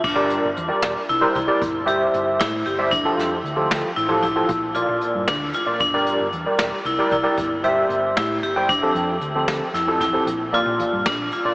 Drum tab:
CC |x----------|-----------|-----------|-----------|
HH |-xxxxxxxx-x|xxxxxxxxxxx|xxxxxxxxxxx|xxxxxxxxxxx|
SD |---o-----o-|-o-o-----o-|---o-----o-|---ooo---o-|
BD |o----oo----|o----oo----|o----oo----|o----o--o--|